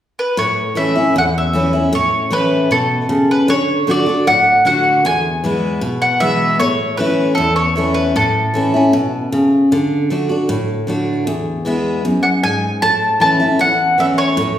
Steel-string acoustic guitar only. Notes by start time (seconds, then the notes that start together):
0.37 A2
0.75 E3 A3 C#4 E4
0.95 C#4 E4
1.16 E2
1.53 E3 A3 C#4 E4
1.73 C#4 E4
1.93 A2
2.30 E3 A3 C#4 E4
2.71 B2
3.09 C#3
3.48 D3
3.87 D3 A3 D4 F#4
4.06 D4 F#4
4.27 A2
4.65 D3 A3 D4 F#4
5.05 E2
5.44 E3 G#3 B3 E4
5.81 B2
6.20 E3 G#3 B3 E4
6.60 A2
6.98 E3 A3 C#4 E4
7.38 E2
7.76 E3 A3 C#4 E4
8.16 A2
8.54 E3 A3 C#4 E4
8.74 C#4 E4
8.93 B2
9.32 C#3
9.72 D3
10.10 D3 A3 D4 F#4
10.29 D4 F#4
10.49 A2
10.87 D3 A3 D4 F#4
11.27 E2
11.65 E3 G#3 B3 E4
12.05 F#2
12.43 G#2
12.82 A2
13.20 E3 A3 C#4 E4
13.40 C#4 E4
13.59 E2
13.98 E3 A3 C#4 E4
14.37 A2